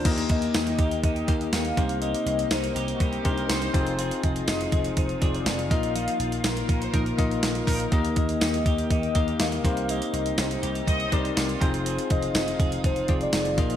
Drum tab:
CC |x---------------|----------------|----------------|----------------|
HH |xxxxxxxxxxxxxxxx|xxxxxxxxxxxxxxxx|xxxxxxxxxxxxxxxx|xxxxxxxxxxxxxxox|
TB |----x-------x---|----x-------x---|----x-------x---|----x-------x---|
SD |----o-------o---|----o-------o---|----o-------o---|----o-------o---|
BD |o-o---o-o-o---o-|--------o-o---o-|--o---o-o-o---o-|------o-o-o---o-|

CC |----------------|----------------|----------------|
HH |xxxxxxxxxxxxxxxx|xxxxxxxxxxxxxxxx|xxxxxxxxxxxxxxxx|
TB |----x-------x---|----x-------x---|----x-------x---|
SD |----o-------o---|----o-------o---|----o-------o---|
BD |o-o---o-o-o---o-|--------o-o---o-|--o---o-o-o---o-|